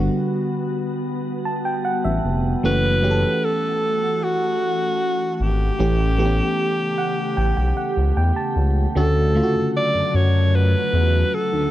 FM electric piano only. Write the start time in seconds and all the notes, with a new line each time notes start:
Already playing: D3 G3 B3 F#4
1.45 A5
1.65 G5
1.85 F#5
2.04 E5
2.63 E3 A3 C#4 F#4
3.02 E3 A3 C#4 G4
3.11 A4
5.79 E3 A3 C#4 G4
6.18 E3 A3 B3 G4
6.25 C#4
6.98 F#5
7.37 G5
7.57 G5
7.77 F#5
8.17 G5
8.36 A5
8.95 D3 A3 C#4 F#4
9.35 C#3 D3 A3 F4
9.43 F#4